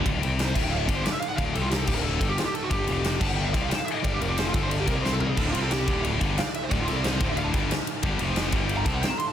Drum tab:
CC |---x----|---x----|---x----|--------|
RD |xxx--xxx|xxx--xxx|xxx--xxx|xxxxxx--|
SD |--o---o-|--o---o-|--o---o-|--o---o-|
FT |--------|--------|--------|-------o|
BD |o--o-o--|o--o-o--|o--o-o--|o--o-o--|

CC |x-------|--------|--------|
RD |-xxxxxxx|xxxxxxxx|xxxxxxxx|
SD |--o---o-|--o---o-|--o---o-|
FT |--------|--------|--------|
BD |o--o-o--|o--o-o--|o--o-o--|